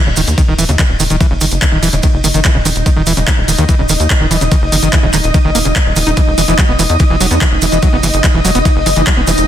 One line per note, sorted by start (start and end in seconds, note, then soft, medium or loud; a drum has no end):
0.00 9.47 D#4 medium
0.00 9.47 D#5 medium
0.00 impact medium
0.07 0.14 D#1 medium
0.07 0.09 C#3 loud
0.16 0.24 D#1 loud
0.16 0.21 D#3 loud
0.16 open hi-hat loud
0.16 maracas loud
0.27 0.35 D#2 medium
0.27 closed hi-hat medium
0.27 maracas medium
0.38 0.42 D#3 medium
0.38 kick loud
0.38 closed hi-hat medium
0.38 ride medium
0.38 maracas soft
0.48 0.55 D#1 medium
0.48 0.54 D#3 medium
0.58 0.66 D#1 loud
0.58 0.64 E3 loud
0.58 open hi-hat loud
0.58 maracas loud
0.69 0.76 D#2 medium
0.69 0.71 C#3 loud
0.69 closed hi-hat medium
0.69 maracas medium
0.79 0.83 D#3 loud
0.79 kick loud
0.79 clap loud
0.79 closed hi-hat medium
0.79 ride medium
0.79 maracas soft
0.90 0.97 D#1 medium
1.00 1.07 D#1 loud
1.00 1.04 D#3 medium
1.00 open hi-hat loud
1.00 maracas loud
1.10 1.18 D#1 medium
1.10 1.16 D#3 medium
1.10 closed hi-hat medium
1.10 maracas medium
1.21 1.26 E3 loud
1.21 kick loud
1.21 closed hi-hat medium
1.21 ride medium
1.21 maracas soft
1.31 1.38 F#1 medium
1.31 1.33 C#3 loud
1.41 1.49 F#1 loud
1.41 1.45 D#3 loud
1.41 open hi-hat loud
1.41 maracas loud
1.51 1.59 F#1 loud
1.51 closed hi-hat medium
1.51 maracas medium
1.62 1.66 D#3 medium
1.62 kick loud
1.62 clap loud
1.62 closed hi-hat medium
1.62 ride medium
1.62 maracas soft
1.72 1.80 D#1 medium
1.72 1.78 D#3 medium
1.83 1.90 D#1 loud
1.83 1.88 E3 loud
1.83 open hi-hat loud
1.83 maracas medium
1.93 2.00 D#1 medium
1.93 1.95 C#3 loud
1.93 closed hi-hat medium
1.93 maracas medium
2.03 2.07 D#3 loud
2.03 kick loud
2.03 closed hi-hat medium
2.03 ride medium
2.03 maracas soft
2.14 2.21 F#1 medium
2.24 2.31 F#1 loud
2.24 2.28 D#3 medium
2.24 open hi-hat loud
2.24 maracas medium
2.34 2.42 F#1 medium
2.34 2.40 D#3 medium
2.34 closed hi-hat medium
2.34 maracas medium
2.44 2.50 E3 loud
2.44 kick loud
2.44 clap loud
2.44 closed hi-hat medium
2.44 ride medium
2.44 maracas soft
2.55 2.62 D#1 medium
2.55 2.57 C#3 loud
2.65 2.73 D#1 loud
2.65 2.69 D#3 loud
2.65 open hi-hat loud
2.65 maracas loud
2.76 2.83 D#1 medium
2.76 closed hi-hat medium
2.76 maracas medium
2.86 2.90 D#3 medium
2.86 kick loud
2.86 closed hi-hat medium
2.86 ride medium
2.86 maracas soft
2.96 3.04 D#1 medium
2.96 3.02 D#3 medium
3.06 3.14 D#1 loud
3.06 3.12 E3 loud
3.06 open hi-hat loud
3.06 maracas medium
3.17 3.24 D#1 medium
3.17 3.19 C#3 loud
3.17 closed hi-hat medium
3.17 maracas medium
3.27 3.31 D#3 loud
3.27 kick loud
3.27 clap loud
3.27 closed hi-hat medium
3.27 ride medium
3.27 maracas soft
3.38 3.45 D#1 medium
3.48 3.55 D#1 loud
3.48 3.52 D#3 medium
3.48 open hi-hat loud
3.48 maracas loud
3.58 3.66 D#2 medium
3.58 3.64 D#3 medium
3.58 closed hi-hat medium
3.58 maracas medium
3.69 3.74 E3 loud
3.69 kick loud
3.69 closed hi-hat medium
3.69 ride medium
3.69 maracas soft
3.79 3.86 D#1 medium
3.79 3.81 C#3 loud
3.89 3.97 D#1 loud
3.89 3.93 D#3 loud
3.89 open hi-hat loud
3.89 maracas loud
4.00 4.07 D#2 medium
4.00 closed hi-hat medium
4.00 maracas medium
4.10 4.14 D#3 medium
4.10 kick loud
4.10 clap loud
4.10 closed hi-hat medium
4.10 ride medium
4.10 maracas soft
4.21 4.28 D#1 medium
4.21 4.26 D#3 medium
4.31 4.38 D#1 loud
4.31 4.37 E3 loud
4.31 open hi-hat loud
4.31 maracas loud
4.41 4.49 D#1 medium
4.41 4.43 C#3 loud
4.41 closed hi-hat medium
4.41 maracas medium
4.51 4.55 D#3 loud
4.51 kick loud
4.51 closed hi-hat medium
4.51 ride medium
4.51 maracas soft
4.62 4.69 F#1 medium
4.72 4.80 F#1 loud
4.72 4.76 D#3 medium
4.72 open hi-hat loud
4.72 maracas medium
4.83 4.90 F#1 medium
4.83 4.88 D#3 medium
4.83 closed hi-hat medium
4.83 maracas medium
4.93 4.99 E3 loud
4.93 kick loud
4.93 clap loud
4.93 closed hi-hat medium
4.93 ride medium
4.93 maracas soft
5.03 5.11 D#1 medium
5.03 5.06 C#3 loud
5.13 5.21 D#1 medium
5.13 5.17 D#3 loud
5.13 clap soft
5.13 open hi-hat loud
5.13 maracas medium
5.24 5.31 D#1 medium
5.24 closed hi-hat medium
5.24 maracas medium
5.34 5.38 D#3 medium
5.34 kick loud
5.34 closed hi-hat medium
5.34 ride medium
5.34 maracas soft
5.45 5.52 F#1 medium
5.45 5.50 D#3 medium
5.55 5.62 D#1 loud
5.55 5.59 A#3 loud
5.55 open hi-hat loud
5.55 maracas loud
5.65 5.73 D#1 medium
5.65 5.68 C#3 medium
5.65 closed hi-hat medium
5.65 maracas medium
5.76 5.78 D#3 medium
5.76 kick loud
5.76 clap loud
5.76 closed hi-hat medium
5.76 ride medium
5.76 maracas soft
5.86 5.93 D#1 medium
5.96 6.04 D#1 loud
5.96 5.99 D#3 loud
5.96 open hi-hat loud
5.96 maracas medium
6.07 6.14 D#1 loud
6.07 6.11 D#4 loud
6.07 closed hi-hat medium
6.07 maracas medium
6.17 6.21 E3 loud
6.17 kick loud
6.17 closed hi-hat medium
6.17 ride medium
6.17 maracas soft
6.27 6.35 E1 medium
6.38 6.45 E1 loud
6.38 6.42 E3 medium
6.38 open hi-hat loud
6.38 maracas medium
6.48 6.55 E1 medium
6.48 6.54 E3 medium
6.48 closed hi-hat medium
6.48 maracas soft
6.58 6.64 F#3 loud
6.58 kick loud
6.58 clap loud
6.58 closed hi-hat medium
6.58 ride medium
6.58 maracas soft
6.69 6.76 E1 medium
6.69 6.73 B3 medium
6.79 6.86 E1 loud
6.79 6.83 E3 loud
6.79 open hi-hat loud
6.79 maracas medium
6.89 6.97 E2 medium
6.89 closed hi-hat medium
6.89 maracas soft
6.99 7.04 E3 medium
6.99 kick loud
6.99 closed hi-hat medium
6.99 ride medium
6.99 maracas soft
7.10 7.17 E1 medium
7.10 7.16 E3 medium
7.21 7.28 E1 loud
7.21 7.26 F#3 loud
7.21 open hi-hat loud
7.21 maracas loud
7.31 7.38 E2 loud
7.31 7.35 B3 medium
7.31 closed hi-hat medium
7.31 maracas medium
7.41 7.45 E3 loud
7.41 kick loud
7.41 clap loud
7.41 closed hi-hat medium
7.41 ride medium
7.41 maracas soft
7.52 7.59 E1 medium
7.62 7.69 E1 loud
7.62 7.66 E3 medium
7.62 open hi-hat loud
7.62 maracas medium
7.72 7.80 E1 medium
7.72 7.78 E3 medium
7.72 closed hi-hat medium
7.72 maracas medium
7.82 7.88 F#3 loud
7.82 kick loud
7.82 closed hi-hat medium
7.82 ride medium
7.82 maracas soft
7.93 8.00 F#1 medium
7.93 7.97 B3 medium
8.03 8.11 F#1 loud
8.03 8.07 E3 loud
8.03 open hi-hat loud
8.03 maracas medium
8.13 8.21 F#1 medium
8.13 closed hi-hat medium
8.13 maracas medium
8.24 8.28 E3 medium
8.24 kick loud
8.24 clap loud
8.24 closed hi-hat medium
8.24 ride medium
8.24 maracas soft
8.34 8.42 E1 medium
8.34 8.40 E3 medium
8.45 8.52 E1 loud
8.45 8.50 F#3 loud
8.45 open hi-hat loud
8.45 maracas medium
8.55 8.62 E1 medium
8.55 8.59 B3 medium
8.55 closed hi-hat medium
8.55 maracas medium
8.65 8.69 E3 loud
8.65 kick loud
8.65 closed hi-hat medium
8.65 ride medium
8.65 maracas soft
8.76 8.83 F#1 medium
8.86 8.93 F#1 loud
8.86 8.90 E3 medium
8.86 open hi-hat loud
8.86 maracas medium
8.96 9.04 F#1 loud
8.96 9.02 E3 medium
8.96 closed hi-hat medium
8.96 maracas medium
9.07 9.12 F#3 loud
9.07 kick loud
9.07 clap loud
9.07 closed hi-hat medium
9.07 ride medium
9.07 maracas soft
9.17 9.24 E1 medium
9.17 9.21 B3 medium
9.27 9.35 E1 loud
9.27 9.31 E3 loud
9.27 open hi-hat loud
9.27 zap medium
9.27 maracas medium
9.38 9.45 E1 medium
9.38 closed hi-hat medium
9.38 maracas medium